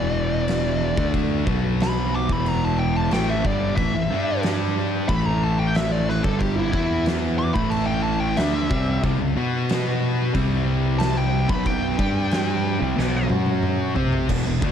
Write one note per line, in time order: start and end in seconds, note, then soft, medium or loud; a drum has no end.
0.00 0.93 E1 medium
0.00 0.96 E2 medium
0.00 0.96 B2 medium
0.00 0.97 E3 loud
0.00 1.11 D5 loud
0.48 snare loud
0.48 crash medium
0.97 1.44 D2 loud
0.97 1.46 D3 loud
0.97 1.46 A3 medium
0.97 1.46 D4 loud
0.97 kick loud
1.14 kick medium
1.14 crash medium
1.46 2.25 B1 loud
1.46 2.28 B2 medium
1.46 2.29 F#3 loud
1.46 2.29 B3 loud
1.46 kick loud
1.80 2.13 B5 loud
1.80 snare loud
1.80 crash medium
2.15 2.32 D6 loud
2.29 3.08 E1 medium
2.29 3.11 E2 medium
2.29 3.11 B2 medium
2.29 3.11 E3 loud
2.29 2.48 B5 medium
2.29 kick loud
2.46 2.63 A#5 medium
2.46 crash medium
2.65 2.79 A5 medium
2.80 2.96 G5 medium
2.96 3.13 A5 medium
3.11 3.42 A1 medium
3.11 3.44 A2 medium
3.11 3.44 E3 loud
3.11 3.44 A3 loud
3.11 3.28 G5 loud
3.11 snare loud
3.11 crash medium
3.30 3.46 E5 medium
3.44 3.76 G1 loud
3.44 3.76 G2 loud
3.44 3.77 D3 medium
3.44 3.77 G3 loud
3.44 3.76 D5 medium
3.44 kick loud
3.77 3.93 A1 medium
3.77 3.93 A2 medium
3.77 3.93 E3 medium
3.77 4.41 E5 loud
3.77 kick loud
3.77 crash medium
3.94 4.10 A1 medium
3.94 4.11 A2 medium
3.94 4.11 E3 medium
4.11 5.05 G2 medium
4.11 5.09 G3 medium
4.11 5.09 D4 loud
4.11 5.09 G4 medium
4.43 snare loud
4.43 crash medium
5.09 6.21 A1 medium
5.09 6.23 A2 medium
5.09 6.24 E3 loud
5.09 6.24 A3 medium
5.09 5.26 B5 loud
5.09 kick loud
5.09 crash medium
5.26 5.42 A#5 loud
5.44 5.59 A5 medium
5.59 5.75 G5 medium
5.75 5.91 E5 medium
5.75 snare loud
5.75 crash medium
5.91 6.08 D5 loud
6.09 6.24 B4 loud
6.09 snare soft
6.24 6.70 G1 loud
6.24 6.73 G2 loud
6.24 6.73 D3 loud
6.24 6.73 G3 loud
6.24 6.40 A4 medium
6.24 kick loud
6.39 6.56 G4 loud
6.39 kick loud
6.39 crash medium
6.56 6.71 E4 medium
6.72 7.52 E2 loud
6.72 7.55 E3 loud
6.72 7.55 B3 loud
6.72 7.05 E4 loud
6.72 7.55 E4 medium
6.72 kick loud
7.06 snare loud
7.06 crash medium
7.39 7.54 D6 loud
7.54 8.34 A1 medium
7.54 8.37 A2 medium
7.54 8.37 E3 loud
7.54 8.37 A3 loud
7.54 7.71 B5 medium
7.54 kick loud
7.70 7.86 A5 loud
7.70 crash medium
7.87 8.03 G5 medium
8.03 8.20 A5 loud
8.20 8.37 G5 loud
8.37 8.69 D2 loud
8.37 8.70 D3 loud
8.37 8.70 A3 loud
8.37 8.71 D4 loud
8.37 9.01 E5 loud
8.37 snare loud
8.37 crash medium
8.70 9.01 C2 loud
8.70 9.03 C3 loud
8.70 9.03 G3 loud
8.70 9.04 C4 loud
8.70 kick loud
9.03 9.19 C2 medium
9.03 9.20 C3 loud
9.03 9.20 G3 loud
9.03 kick loud
9.03 crash medium
9.20 9.36 C2 medium
9.20 9.37 C#3 medium
9.20 9.35 G#3 medium
9.36 10.32 B2 loud
9.36 10.34 B3 medium
9.36 10.34 F#4 loud
9.36 10.35 B4 loud
9.69 snare loud
9.69 crash medium
10.34 11.46 C2 medium
10.34 11.49 C3 loud
10.34 11.49 G3 loud
10.34 11.49 C4 loud
10.34 kick loud
10.34 crash medium
10.99 11.17 A5 medium
10.99 snare loud
10.99 crash medium
11.17 11.49 G5 loud
11.49 11.96 B1 loud
11.49 11.98 B2 medium
11.49 11.98 F#3 medium
11.49 11.98 B3 loud
11.49 11.66 B5 medium
11.49 kick loud
11.66 13.27 G5 loud
11.66 kick loud
11.66 crash medium
11.98 12.77 G2 medium
11.98 12.79 G3 loud
11.98 12.80 D4 loud
11.98 12.81 G4 loud
11.98 kick loud
12.31 snare loud
12.31 crash medium
12.79 12.97 C2 loud
12.79 12.96 C3 loud
12.79 12.97 G3 medium
12.97 13.29 B1 medium
12.97 13.28 B2 medium
12.97 13.28 F#3 loud
12.97 13.30 B3 loud
12.97 snare medium
13.29 13.92 F#2 medium
13.29 13.94 F#3 loud
13.29 13.95 C#4 loud
13.29 13.95 F#4 loud
13.29 high tom medium
13.46 high tom medium
13.63 mid tom medium
13.96 14.27 C3 loud
13.96 14.28 C4 loud
13.96 14.28 G4 loud
13.96 14.28 C5 loud
13.96 floor tom loud
14.13 floor tom medium
14.28 14.45 E1 medium
14.28 14.44 E2 medium
14.28 14.45 B2 loud
14.28 kick loud
14.28 crash loud
14.28 crash medium
14.45 14.61 E1 medium
14.45 14.62 E2 medium
14.45 14.61 B2 medium
14.61 14.72 D2 medium
14.61 14.72 D3 medium
14.61 14.72 A3 medium
14.61 14.72 D4 loud
14.61 kick loud